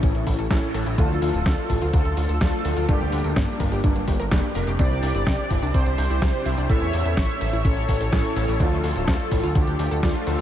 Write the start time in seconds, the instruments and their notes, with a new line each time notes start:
Already playing: electric grand piano A2 A3 C#4 E4 A4, analog polysynth C#4 E4
0.03 analog synth bass A1, synth arpeggio sound C#4, kick, closed hi-hat, tambourine
0.15 analog synth bass A1, closed hi-hat, tambourine
0.27 analog synth bass A1, synth arpeggio sound E4, kick, open hi-hat
0.39 analog synth bass A1, synth arpeggio sound A4, closed hi-hat, tambourine
0.50 analog synth bass A1, electric grand piano A2 A3 C#4 E4 A4, synth arpeggio sound C#5, kick, snare, closed hi-hat, tambourine
0.63 closed hi-hat, tambourine
0.74 analog synth bass A1, synth arpeggio sound A4, open hi-hat
0.86 analog synth bass A1, synth arpeggio sound E4, closed hi-hat, tambourine
0.98 analog synth bass D2, electric grand piano F3 A3 D4 F4, synth arpeggio sound D4, analog polysynth F4 A4, kick, closed hi-hat, tambourine
1.10 analog synth bass D2, tambourine
1.22 analog synth bass D2, synth arpeggio sound F4, open hi-hat
1.34 analog synth bass D1, synth arpeggio sound A4, closed hi-hat, tambourine
1.46 analog synth bass D2, synth arpeggio sound D5, kick, snare, closed hi-hat, tambourine
1.58 closed hi-hat, tambourine
1.70 analog synth bass A1, synth arpeggio sound A4, kick, open hi-hat
1.82 analog synth bass D2, synth arpeggio sound F4, closed hi-hat, tambourine
1.93 analog synth bass D2, synth arpeggio sound D4, analog polysynth F4 A4, kick, closed hi-hat, tambourine
2.05 analog synth bass D2, closed hi-hat, tambourine
2.17 analog synth bass D2, synth arpeggio sound F4, open hi-hat
2.29 analog synth bass D2, synth arpeggio sound A4, closed hi-hat, tambourine
2.41 analog synth bass D2, electric grand piano F3 A3 D4 F4, synth arpeggio sound D5, kick, snare, closed hi-hat, tambourine
2.53 closed hi-hat, tambourine
2.65 analog synth bass D2, synth arpeggio sound A4, open hi-hat
2.77 analog synth bass D2, synth arpeggio sound F4, closed hi-hat, tambourine
2.89 analog synth bass G1, electric grand piano G2 G3 A#3 D4 G4, synth arpeggio sound D4, analog polysynth D4 G4, kick, closed hi-hat, tambourine
3.01 analog synth bass D2, tambourine
3.12 analog synth bass D2, synth arpeggio sound G4, open hi-hat
3.24 analog synth bass D2, synth arpeggio sound A#4, closed hi-hat, tambourine
3.36 analog synth bass G1, analog polysynth A#3 D4, synth arpeggio sound D5, kick, snare, closed hi-hat, tambourine
3.48 closed hi-hat, tambourine
3.60 analog synth bass G1, synth arpeggio sound A#4, kick, open hi-hat
3.72 analog synth bass G1, synth arpeggio sound G4, closed hi-hat, tambourine
3.84 analog synth bass G1, synth arpeggio sound D4, kick, closed hi-hat, tambourine
3.96 analog synth bass G1, closed hi-hat, tambourine
4.08 analog synth bass G1, synth arpeggio sound G4, kick, open hi-hat
4.20 analog synth bass G1, synth arpeggio sound A#4, closed hi-hat, tambourine
4.31 analog synth bass F1, electric grand piano G2 G3 A#3 D4 G4, synth arpeggio sound D5, kick, snare, closed hi-hat, tambourine
4.43 closed hi-hat, tambourine
4.55 analog synth bass F1, synth arpeggio sound A#4, open hi-hat
4.67 analog synth bass F1, synth arpeggio sound G4, closed hi-hat, tambourine
4.79 analog synth bass C2, electric grand piano C3 D4 E4 G4 C5, synth arpeggio sound C4, analog polysynth G4 D5, kick, closed hi-hat, tambourine
4.91 analog synth bass C2, tambourine
5.03 analog synth bass C2, synth arpeggio sound D4, open hi-hat
5.15 analog synth bass G1, synth arpeggio sound E4, closed hi-hat, tambourine
5.27 analog synth bass C2, synth arpeggio sound G4, kick, snare, closed hi-hat, tambourine
5.39 closed hi-hat, tambourine
5.50 analog synth bass G1, synth arpeggio sound E4, kick, open hi-hat
5.62 analog synth bass C2, synth arpeggio sound D4, closed hi-hat, tambourine
5.74 analog synth bass C2, synth arpeggio sound C4, analog polysynth G4 C5, kick, closed hi-hat, tambourine
5.86 analog synth bass C2, closed hi-hat, tambourine
5.98 analog synth bass C2, synth arpeggio sound D4, open hi-hat
6.10 analog synth bass C2, synth arpeggio sound E4, closed hi-hat, tambourine
6.22 analog synth bass C2, electric grand piano C3 D4 E4 G4 C5, synth arpeggio sound G4, kick, snare, closed hi-hat, tambourine
6.34 closed hi-hat, tambourine
6.46 analog synth bass C2, synth arpeggio sound E4, open hi-hat
6.58 analog synth bass C2, synth arpeggio sound D4, closed hi-hat, tambourine
6.69 analog synth bass A1, electric grand piano A2 A3 C#4 E4 A4, synth arpeggio sound C#4, analog polysynth C#5 E5, kick, closed hi-hat, tambourine
6.82 analog synth bass E2, tambourine
6.93 analog synth bass E2, synth arpeggio sound E4, open hi-hat
7.05 analog synth bass E2, synth arpeggio sound A4, closed hi-hat, tambourine
7.17 analog synth bass A1, synth arpeggio sound C#5, kick, snare, closed hi-hat, tambourine
7.29 closed hi-hat, tambourine
7.41 analog synth bass A1, synth arpeggio sound A4, open hi-hat
7.53 analog synth bass A1, synth arpeggio sound E4, closed hi-hat, tambourine
7.65 analog synth bass A1, synth arpeggio sound C#4, analog polysynth A4 C#5, kick, closed hi-hat, tambourine
7.77 analog synth bass A1, closed hi-hat, tambourine
7.89 analog synth bass A1, synth arpeggio sound E4, kick, open hi-hat
8.01 analog synth bass A1, synth arpeggio sound A4, closed hi-hat, tambourine
8.12 analog synth bass A1, electric grand piano A2 A3 C#4 E4 A4, synth arpeggio sound C#5, kick, snare, closed hi-hat, tambourine
8.25 closed hi-hat, tambourine
8.36 analog synth bass A1, synth arpeggio sound A4, open hi-hat
8.48 analog synth bass A1, synth arpeggio sound E4, closed hi-hat, tambourine
8.60 analog synth bass D2, electric grand piano F3 A3 D4 F4, synth arpeggio sound D4, analog polysynth F4 A4, kick, closed hi-hat, tambourine
8.72 analog synth bass D2, tambourine
8.84 analog synth bass D2, synth arpeggio sound F4, open hi-hat
8.96 analog synth bass D1, synth arpeggio sound A4, closed hi-hat, tambourine
9.08 analog synth bass D2, synth arpeggio sound D5, kick, snare, closed hi-hat, tambourine
9.20 closed hi-hat, tambourine
9.31 analog synth bass A1, synth arpeggio sound A4, kick, open hi-hat
9.43 analog synth bass D2, synth arpeggio sound F4, closed hi-hat, tambourine
9.55 analog synth bass D2, synth arpeggio sound D4, analog polysynth D4 G4, kick, closed hi-hat, tambourine
9.67 analog synth bass D2, closed hi-hat, tambourine
9.79 analog synth bass D2, synth arpeggio sound F4, open hi-hat
9.91 analog synth bass D2, synth arpeggio sound A4, closed hi-hat, tambourine
10.03 analog synth bass D2, electric grand piano F3 A3 D4 F4, analog polysynth D4 F4, synth arpeggio sound D5, kick, snare, closed hi-hat, tambourine
10.15 closed hi-hat, tambourine
10.27 analog synth bass D2, analog polysynth F4 A4, synth arpeggio sound A4, open hi-hat